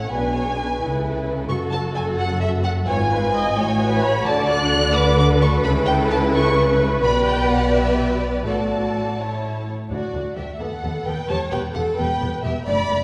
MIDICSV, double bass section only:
0, 0, Header, 1, 2, 480
1, 0, Start_track
1, 0, Tempo, 461538
1, 108, Time_signature, 6, 3, 24, 8
1, 7788, Tempo, 480769
1, 10188, Tempo, 462606
1, 13453, End_track
2, 0, Start_track
2, 0, Title_t, "Double bass section"
2, 0, Program_c, 0, 48
2, 107, Note_on_c, 0, 35, 81
2, 820, Note_off_c, 0, 35, 0
2, 842, Note_on_c, 0, 37, 83
2, 1548, Note_off_c, 0, 37, 0
2, 1566, Note_on_c, 0, 30, 94
2, 3002, Note_off_c, 0, 30, 0
2, 3003, Note_on_c, 0, 32, 102
2, 3707, Note_off_c, 0, 32, 0
2, 3720, Note_on_c, 0, 33, 107
2, 4433, Note_on_c, 0, 38, 105
2, 4434, Note_off_c, 0, 33, 0
2, 5841, Note_off_c, 0, 38, 0
2, 5877, Note_on_c, 0, 37, 112
2, 7283, Note_off_c, 0, 37, 0
2, 7311, Note_on_c, 0, 35, 101
2, 8718, Note_off_c, 0, 35, 0
2, 8762, Note_on_c, 0, 33, 70
2, 9964, Note_off_c, 0, 33, 0
2, 10196, Note_on_c, 0, 38, 68
2, 10279, Note_off_c, 0, 38, 0
2, 10437, Note_on_c, 0, 38, 68
2, 10520, Note_off_c, 0, 38, 0
2, 10683, Note_on_c, 0, 38, 59
2, 10766, Note_off_c, 0, 38, 0
2, 10925, Note_on_c, 0, 39, 68
2, 11008, Note_off_c, 0, 39, 0
2, 11171, Note_on_c, 0, 39, 71
2, 11254, Note_off_c, 0, 39, 0
2, 11400, Note_on_c, 0, 39, 73
2, 11483, Note_off_c, 0, 39, 0
2, 11637, Note_on_c, 0, 28, 82
2, 11720, Note_off_c, 0, 28, 0
2, 11880, Note_on_c, 0, 28, 80
2, 11963, Note_off_c, 0, 28, 0
2, 12122, Note_on_c, 0, 28, 71
2, 12205, Note_off_c, 0, 28, 0
2, 12363, Note_on_c, 0, 28, 83
2, 12446, Note_off_c, 0, 28, 0
2, 12596, Note_on_c, 0, 28, 80
2, 12679, Note_off_c, 0, 28, 0
2, 12838, Note_on_c, 0, 28, 77
2, 12921, Note_off_c, 0, 28, 0
2, 13075, Note_on_c, 0, 30, 82
2, 13158, Note_off_c, 0, 30, 0
2, 13314, Note_on_c, 0, 30, 76
2, 13397, Note_off_c, 0, 30, 0
2, 13453, End_track
0, 0, End_of_file